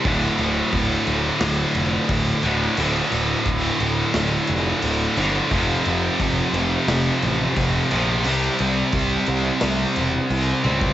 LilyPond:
<<
  \new Staff \with { instrumentName = "Distorted electric guitar" } { \clef bass \time 4/4 \key d \minor \tempo 4 = 88 <d, a, d>2.~ <d, a, d>8 <d, a, d>8 | <d, a, d>2.~ <d, a, d>8 <d, a, d>8 | <f, c f>2.~ <f, c f>8 <f, c f>8 | <c g c'>2.~ <c g c'>8 <c g c'>8 | }
  \new Staff \with { instrumentName = "Picked electric bass" } { \clef bass \time 4/4 \key d \minor d,,8 d,,8 d,,8 d,,8 d,,8 f,,8 d,,8 d,,8 | d,,8 d,,8 d,,8 d,,8 d,,8 f,,8 d,,8 g,,8 | f,,8 f,,8 f,,8 f,,8 f,,8 a,,8 f,,8 bes,,8 | c,8 c,8 c,8 c,8 c,8 e,,8 c,8 cis,8 | }
  \new DrumStaff \with { instrumentName = "Drums" } \drummode { \time 4/4 <cymc bd>8 cymc8 <cymc bd>8 cymc8 <cymc sn>8 cymc8 <cymc bd>8 cymc8 | cymc8 cymc8 <cymc bd>8 cymc8 <cymc sn>8 cymc8 cymc8 cymc8 | <cymc bd>8 cymc8 <cymc bd>8 cymc8 <cymc sn>8 cymc8 <cymc bd>8 cymc8 | cymc8 cymc8 <cymc bd>8 cymc8 <cymc sn>8 cymc8 cymc8 tommh16 bd16 | }
>>